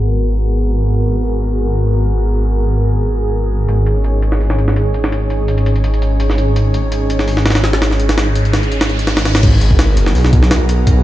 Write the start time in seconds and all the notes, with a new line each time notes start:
Already playing: G#1 B3 F#4 G#4 A#4
3.68 G#1 C#4 D#4 C#5, closed hi-hat
3.86 closed hi-hat
4.04 closed hi-hat
4.22 closed hi-hat
4.32 snare
4.40 open hi-hat
4.50 snare
4.58 closed hi-hat
4.68 snare
4.76 closed hi-hat
4.94 closed hi-hat
5.04 snare
5.12 closed hi-hat
5.30 closed hi-hat
5.48 closed hi-hat
5.58 closed hi-hat
5.66 closed hi-hat
5.76 closed hi-hat
5.84 closed hi-hat
5.94 closed hi-hat
6.02 closed hi-hat
6.20 closed hi-hat
6.30 snare
6.38 closed hi-hat
6.56 closed hi-hat, riser
6.74 closed hi-hat
6.92 closed hi-hat
7.10 closed hi-hat
7.19 snare
7.28 open hi-hat
7.37 snare
7.46 snare, closed hi-hat
7.50 snare, closed hi-hat
7.55 snare, closed hi-hat
7.64 snare, closed hi-hat
7.73 snare, closed hi-hat
7.82 snare, closed hi-hat
7.91 snare
8.00 closed hi-hat
8.09 snare, closed hi-hat
8.18 snare, closed hi-hat
8.36 closed hi-hat
8.45 closed hi-hat
8.53 snare, closed hi-hat
8.63 closed hi-hat
8.72 closed hi-hat
8.81 snare, closed hi-hat
8.89 closed hi-hat
8.99 closed hi-hat
9.07 snare, closed hi-hat
9.17 snare, closed hi-hat
9.25 snare, closed hi-hat
9.35 snare, closed hi-hat
9.43 G#1 B3 F#4 G#4 A#4, kick, closed hi-hat, crash
9.61 closed hi-hat
9.71 kick
9.79 snare, closed hi-hat
9.97 F#1, closed hi-hat
10.06 snare
10.15 B1, open hi-hat
10.25 snare
10.33 kick, closed hi-hat
10.43 snare
10.51 snare, closed hi-hat
10.69 closed hi-hat
10.87 kick, closed hi-hat